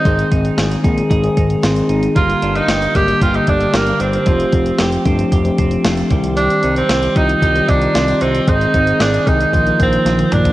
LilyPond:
<<
  \new Staff \with { instrumentName = "Clean electric guitar" } { \time 4/4 \key c \minor \tempo 4 = 114 c'8 ees'8 aes'8 ees'8 aes'8 ees'8 c'8 ees'8 | bes8 d'8 g'8 d'8 g'8 d'8 bes8 d'8 | f8 c'8 g'8 c'8 g'8 c'8 a8 g8 | g8 ees'8 g'8 ees'8 g'8 ees'8 c'8 ees'8 |
c'8 ees'8 aes'8 ees'8 f8 bes8 f8 bes8 | }
  \new Staff \with { instrumentName = "Tenor saxophone" } { \time 4/4 \key c \minor ees'8 r2. r8 | f'8. ees'8. g'8 f'16 ees'16 d'8 bes8 c'8~ | c'4. r2 r8 | d'8. c'8. ees'4 d'4 c'8 |
ees'4 d'8 ees'4 c'4 d'8 | }
  \new Staff \with { instrumentName = "Tine electric piano" } { \time 4/4 \key c \minor <ees aes c' aes'>4 r8 <ees aes c' aes'>8 r16 <ees aes c' aes'>4~ <ees aes c' aes'>16 r8 | <d g bes g'>4 r8 <d g bes g'>8 r16 <d g bes g'>4~ <d g bes g'>16 r8 | <f a c' g'>4 r8 <f a c' d'>8 r16 <f a c' g'>4~ <f a c' g'>16 <ees g c' g'>8~ | <ees g c' g'>4 r8 <ees g c' f'>8 r16 <ees g c' g'>4~ <ees g c' g'>16 r8 |
<ees aes c' aes'>4 r8 <ees aes c' aes'>8 <ees f bes f'>16 <ees f bes ees'>4~ <ees f bes ees'>16 r8 | }
  \new Staff \with { instrumentName = "Analog synth bass" } { \clef bass \time 4/4 \key c \minor aes,,8 aes,,8 aes,,8 bes,,8 aes,,8 aes,,8 aes,,8 aes,,8 | g,,8 g,,8 g,,8 aes,,8 g,,8 g,,8 g,,8 g,,8 | f,,8 f,,8 f,,8 g,,8 f,,8 f,,8 f,,8 c,8~ | c,8 c,8 c,8 c,8 c,8 c,8 c,8 c,8 |
aes,,8 aes,,8 aes,,8 c,8 bes,,8 bes,,8 bes,,8 bes,,8 | }
  \new DrumStaff \with { instrumentName = "Drums" } \drummode { \time 4/4 <hh bd>16 hh16 <hh bd>16 hh16 <hh sn>16 hh16 <hh bd>16 hh16 <hh bd>16 hh16 <hh bd>16 hh16 <hh sn>16 hh16 hh16 hh16 | <hh bd>16 hh16 hh16 hh16 <hh sn>16 hh16 <hh bd>16 hh16 <hh bd>16 hh16 <hh bd>16 hh16 <hh sn>16 hh16 hh16 hh16 | <hh bd>16 hh16 <hh bd>16 hh16 <hh sn>16 hh16 <hh bd>16 hh16 <hh bd>16 hh16 <hh bd>16 hh16 <hh sn>16 hh16 <hh bd>16 hh16 | hh16 hh16 hh16 hh16 <hh sn>16 hh16 <hh bd>16 hh16 <hh bd>16 hh16 <hh bd>16 hh16 <hh sn>16 hh16 hh16 hh16 |
<hh bd>16 hh16 <hh bd>16 hh16 <hh sn>16 hh16 <hh bd>16 hh16 <hh bd>16 hh16 <hh bd>16 hh16 <hh sn>16 <hh tommh>16 <hh toml>16 <hh tomfh>16 | }
>>